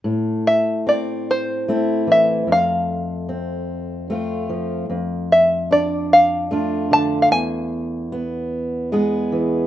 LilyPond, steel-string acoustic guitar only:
\new Staff \with { instrumentName = "Steel-string acoustic guitar" } { \time 6/8 \key a \minor \tempo 4. = 50 << { r4 c'4 <a c' e'>4 | r4 c'4 <a c' f'>4 | r4 d'4 <a d' f'>4 | r4 b4 <gis b gis'>4 | } \\ { a,2~ a,8 e8 | f,2~ f,8 f8 | f,2~ f,8 d8 | e,2~ e,8 e8 | } >> }